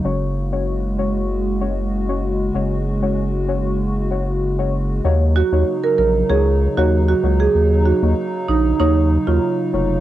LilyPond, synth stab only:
\new Staff \with { instrumentName = "Synth stab" } { \time 4/4 \key ees \minor \tempo 4 = 96 <aes des' ges' des''>8. <aes des' ges' des''>8. <aes des' ges' des''>8 r8 <aes des' ges' des''>16 r8 <aes des' ges' des''>16 r8 | <aes des' ges' des''>8. <aes des' ges' des''>8. <aes des' ges' des''>8 r8 <aes des' ges' des''>16 r8 <aes des' ges' des''>16 r8 | <bes ees' ges' des''>8. <bes ees' ges' des''>16 r4 <bes ees' ges' des''>8. <bes ees' ges' des''>8. <bes ees' ges' des''>8 | r8. <bes ees' ges' des''>16 r4 <bes ees' ges' des''>8. <bes ees' ges' des''>8. <bes ees' ges' des''>8 | }